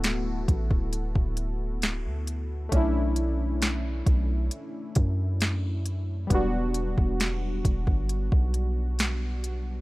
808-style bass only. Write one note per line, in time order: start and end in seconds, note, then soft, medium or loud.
0.00 0.46 D1 loud
0.49 0.70 A1 loud
0.71 1.14 D1 loud
1.16 2.07 D1 loud
2.05 2.69 D2 loud
2.72 4.03 B1 loud
4.07 4.50 B1 loud
4.96 6.27 F#2 loud
6.31 6.95 E1 loud
6.98 7.62 E1 loud
7.65 7.86 E1 loud
7.87 8.30 G1 loud
8.32 9.81 B1 loud